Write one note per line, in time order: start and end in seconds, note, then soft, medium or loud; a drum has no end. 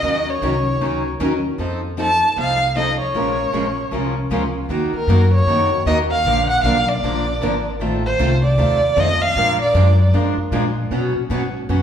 0.00 0.34 D#2 medium
0.00 0.25 D#3 medium
0.00 0.31 D#5 medium
0.04 0.25 F#3 medium
0.04 0.25 C#4 medium
0.04 0.25 D#4 medium
0.04 0.25 A#4 medium
0.30 1.07 C#5 medium
0.42 0.75 C2 medium
0.42 0.54 D#3 medium
0.42 0.54 F#3 medium
0.42 0.54 C#4 medium
0.42 0.54 D#4 medium
0.42 0.54 A#4 medium
0.81 1.14 C#2 medium
0.81 1.02 D#3 medium
0.81 1.02 F#3 medium
0.81 1.02 C#4 medium
0.81 1.02 D#4 medium
0.81 1.03 A#4 medium
1.20 1.53 D#2 medium
1.20 1.31 D#3 medium
1.20 1.31 F#3 medium
1.20 1.31 C#4 medium
1.20 1.32 D#4 medium
1.20 1.32 A#4 medium
1.58 2.21 F2 medium
1.58 1.80 F3 medium
1.58 1.80 C4 medium
1.58 1.80 D#4 medium
1.58 1.80 A4 medium
1.97 2.09 F3 medium
1.97 2.09 C4 medium
1.97 2.09 D#4 medium
1.97 2.09 A4 medium
2.02 2.36 A5 medium
2.36 2.99 C2 medium
2.36 2.58 F3 medium
2.36 2.58 C4 medium
2.36 2.58 D#4 medium
2.36 2.58 A4 medium
2.41 2.75 F5 medium
2.75 2.87 F3 medium
2.75 2.87 C4 medium
2.75 2.87 D#4 medium
2.75 2.87 A4 medium
2.75 2.99 D#5 medium
3.02 4.13 C#5 medium
3.14 3.46 A#1 medium
3.14 3.35 F3 medium
3.14 3.36 G#3 medium
3.14 3.36 C#4 medium
3.14 3.36 F4 medium
3.14 3.36 A#4 medium
3.53 3.86 A#1 medium
3.53 3.64 F3 medium
3.53 3.65 G#3 medium
3.53 3.65 C#4 medium
3.53 3.65 F4 medium
3.53 3.65 A#4 medium
3.91 4.25 C2 medium
3.91 4.13 F3 medium
3.91 4.13 G#3 medium
3.91 4.13 C#4 medium
3.91 4.14 F4 medium
3.91 4.14 A#4 medium
4.30 4.64 C#2 medium
4.30 4.42 F3 medium
4.30 4.42 G#3 medium
4.30 4.42 C#4 medium
4.30 4.43 F4 medium
4.30 4.43 A#4 medium
4.69 4.92 D#2 medium
4.69 4.91 D#3 medium
4.69 4.91 A#3 medium
4.69 4.91 D#4 medium
4.69 4.91 F#4 medium
4.69 4.91 A#4 medium
4.93 5.31 A#4 medium
4.93 muted upright bass stroke soft
5.07 5.46 F#2 medium
5.07 5.20 D#3 medium
5.07 5.20 A#3 medium
5.07 5.20 D#4 medium
5.07 5.21 F#4 medium
5.07 5.21 A#4 medium
5.35 5.84 C#5 medium
5.46 5.85 F2 medium
5.46 5.69 D#3 medium
5.46 5.69 A#3 medium
5.46 5.69 D#4 medium
5.46 5.69 F#4 medium
5.46 5.69 A#4 medium
5.86 6.24 D#2 medium
5.86 5.98 D#3 medium
5.86 5.98 A#3 medium
5.86 5.98 D#4 medium
5.86 5.98 F#4 medium
5.86 5.99 A#4 medium
5.86 5.98 D#5 medium
6.11 6.47 F5 loud
6.25 6.63 A#1 medium
6.25 6.47 D3 medium
6.25 6.47 F3 medium
6.25 6.47 A#3 medium
6.25 6.47 D4 medium
6.25 6.47 A#4 medium
6.50 6.64 F#5 medium
6.63 7.02 B1 medium
6.63 6.76 D3 medium
6.63 6.76 F3 medium
6.63 6.76 A#3 medium
6.63 6.76 D4 medium
6.63 6.76 A#4 medium
6.63 6.90 F5 medium
6.89 7.66 D5 medium
7.03 7.40 A#1 medium
7.03 7.24 D3 medium
7.03 7.25 F3 medium
7.03 7.25 A#3 medium
7.03 7.25 D4 medium
7.03 7.25 A#4 medium
7.41 7.79 G#1 medium
7.41 7.53 D3 medium
7.41 7.54 F3 medium
7.41 7.54 A#3 medium
7.41 7.54 D4 medium
7.41 7.54 A#4 loud
7.79 8.18 A1 medium
7.79 8.02 D#3 medium
7.79 8.02 A3 medium
7.79 8.02 C4 medium
7.79 8.02 F4 medium
7.79 8.02 A4 medium
8.06 8.42 C5 medium
8.19 8.57 C2 medium
8.19 8.31 D#3 medium
8.19 8.31 A3 medium
8.19 8.31 C4 medium
8.19 8.31 F4 medium
8.19 8.31 A4 loud
8.45 9.01 D5 medium
8.58 8.96 D#2 medium
8.58 8.79 D#3 medium
8.58 8.79 A3 medium
8.58 8.80 C4 medium
8.58 8.79 F4 medium
8.58 8.80 A4 medium
8.96 9.35 F2 medium
8.96 9.08 D#3 medium
8.96 9.08 A3 medium
8.96 9.08 C4 medium
8.96 9.08 F4 loud
8.96 9.08 A4 loud
8.96 9.23 D#5 medium
9.22 9.60 F5 loud
9.36 9.74 A#2 medium
9.36 9.57 F3 medium
9.36 9.57 G#3 medium
9.36 9.58 D4 medium
9.36 9.58 F4 medium
9.36 9.58 A#4 medium
9.62 10.11 D5 medium
9.74 10.12 F#2 medium
9.74 9.85 F3 medium
9.74 9.86 G#3 medium
9.74 9.86 D4 medium
9.74 9.86 F4 medium
9.74 9.86 A#4 medium
10.13 10.35 G#2 medium
10.13 10.34 F3 medium
10.13 10.35 G#3 medium
10.13 10.35 D4 medium
10.13 10.35 F4 medium
10.13 10.35 A#4 medium
10.37 muted upright bass stroke soft
10.51 10.90 A#2 medium
10.51 10.63 F3 medium
10.51 10.64 G#3 medium
10.51 10.64 D4 medium
10.51 10.64 F4 loud
10.51 10.64 A#4 loud
10.91 11.13 B2 medium
10.91 11.12 B2 medium
10.91 11.13 F#3 medium
10.91 11.13 B3 medium
10.91 11.13 C#4 medium
10.91 11.13 F#4 medium
10.91 11.13 C#5 medium
11.15 muted upright bass stroke soft
11.30 11.67 G#2 medium
11.30 11.41 B2 medium
11.30 11.42 F#3 medium
11.30 11.41 B3 medium
11.30 11.42 C#4 medium
11.30 11.42 F#4 medium
11.30 11.42 C#5 medium
11.69 11.82 F#2 medium
11.69 11.82 B2 medium
11.69 11.82 F#3 medium
11.69 11.82 B3 medium
11.69 11.82 C#4 medium
11.69 11.82 F#4 medium
11.69 11.82 C#5 medium